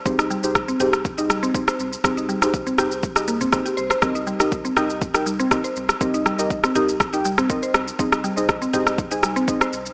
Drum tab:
SH |xxxxxxxxxxxxxxxx|xxxxxxxxxxxxxxxx|xxxxxxxxxxxxxxxx|xxxxxxxxxxxxxxxx|
SD |-r--r--r--r--r--|r--r--r--r--r--r|r--r--r--r--r--r|--r--r--r--r--r-|
T2 |------o-o-------|------o----o----|------o-o-------|------o----o----|
BD |o---o---o---o---|o---o---o---o---|o---o---o---o---|o---o---o---o---|

SH |xxxxxxxxxxxxxxxx|
SD |-r--r--r--r--r--|
T2 |------o-o-------|
BD |o---o---o---o---|